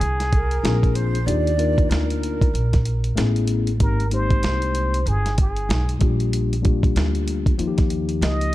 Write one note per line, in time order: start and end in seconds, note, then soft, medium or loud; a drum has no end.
0.00 0.61 C2 medium
0.00 0.97 G#4 medium
0.00 closed hi-hat medium
0.20 snare soft
0.20 closed hi-hat soft
0.33 0.97 A#4 medium
0.33 kick medium
0.33 closed hi-hat medium
0.51 closed hi-hat soft
0.63 1.24 A#1 medium
0.63 1.17 A#3 medium
0.63 1.17 C4 medium
0.63 1.17 D4 medium
0.63 1.18 F4 medium
0.63 1.18 G#4 loud
0.63 snare loud
0.63 closed hi-hat medium
0.83 kick medium
0.83 closed hi-hat soft
0.95 1.28 C5 loud
0.95 closed hi-hat medium
1.15 closed hi-hat soft
1.26 1.87 D#2 medium
1.26 1.50 A#3 medium
1.26 1.51 D4 medium
1.26 1.51 D#4 medium
1.26 1.52 F4 medium
1.26 1.52 G4 medium
1.26 1.91 D5 loud
1.26 closed hi-hat medium
1.47 closed hi-hat soft
1.57 2.47 A#3 medium
1.57 2.47 D4 medium
1.57 2.48 D#4 medium
1.57 2.48 F4 medium
1.57 2.49 A#4 medium
1.57 closed hi-hat medium
1.78 kick loud
1.78 closed hi-hat soft
1.89 2.50 D2 medium
1.89 3.16 A#4 medium
1.89 snare loud
1.89 closed hi-hat medium
2.10 closed hi-hat soft
2.23 closed hi-hat medium
2.41 kick medium
2.41 closed hi-hat soft
2.54 3.14 A#1 medium
2.54 closed hi-hat medium
2.73 kick medium
2.73 snare soft
2.73 closed hi-hat soft
2.85 closed hi-hat medium
3.04 closed hi-hat soft
3.15 3.77 A1 medium
3.15 3.69 A3 medium
3.15 3.69 B3 medium
3.15 3.70 C#4 medium
3.15 3.70 E4 medium
3.15 3.71 G#4 loud
3.15 snare medium
3.15 closed hi-hat medium
3.36 closed hi-hat soft
3.47 closed hi-hat medium
3.67 closed hi-hat medium
3.77 4.40 G#1 medium
3.77 4.03 G#3 medium
3.77 4.03 A#3 medium
3.77 4.04 C4 medium
3.77 4.04 D#4 medium
3.77 4.04 G4 medium
3.77 kick loud
3.77 closed hi-hat loud
3.83 4.11 A#4 medium
4.00 closed hi-hat soft
4.10 5.00 G#3 medium
4.10 5.01 A#3 medium
4.10 5.01 C4 medium
4.10 5.01 D#4 medium
4.10 5.01 G4 medium
4.10 5.10 C5 loud
4.10 closed hi-hat medium
4.30 kick medium
4.30 closed hi-hat soft
4.43 5.03 C2 medium
4.43 snare loud
4.43 closed hi-hat medium
4.62 closed hi-hat medium
4.75 closed hi-hat medium
4.94 closed hi-hat medium
5.06 5.66 G1 medium
5.06 5.39 G#4 medium
5.06 closed hi-hat medium
5.26 snare soft
5.26 closed hi-hat medium
5.38 5.99 G#4 medium
5.38 kick medium
5.38 closed hi-hat medium
5.56 closed hi-hat soft
5.69 5.99 B1 medium
5.69 snare loud
5.69 closed hi-hat medium
5.89 closed hi-hat soft
5.99 6.92 A#1 medium
5.99 6.53 G3 medium
5.99 6.53 A#3 medium
5.99 6.54 D4 medium
5.99 6.54 F4 medium
5.99 6.54 G4 medium
5.99 kick loud
5.99 closed hi-hat medium
6.20 closed hi-hat soft
6.33 closed hi-hat medium
6.53 closed hi-hat soft
6.62 7.52 G3 medium
6.62 7.53 A#3 medium
6.62 7.53 D4 medium
6.62 7.53 F4 medium
6.62 7.54 G4 medium
6.62 kick medium
6.62 closed hi-hat medium
6.83 kick loud
6.83 closed hi-hat soft
6.96 7.56 D2 loud
6.96 snare loud
6.96 closed hi-hat medium
7.15 closed hi-hat soft
7.28 closed hi-hat medium
7.46 kick medium
7.46 closed hi-hat medium
7.58 8.19 D#2 loud
7.58 8.55 F3 medium
7.58 8.55 A#3 medium
7.58 8.55 D#4 medium
7.58 7.68 F4 medium
7.58 closed hi-hat medium
7.68 8.55 G4 loud
7.78 kick loud
7.78 snare soft
7.78 closed hi-hat medium
7.90 closed hi-hat medium
8.09 closed hi-hat soft
8.21 8.55 C#2 medium
8.21 8.55 D#5 loud
8.21 snare loud
8.21 closed hi-hat medium
8.41 closed hi-hat soft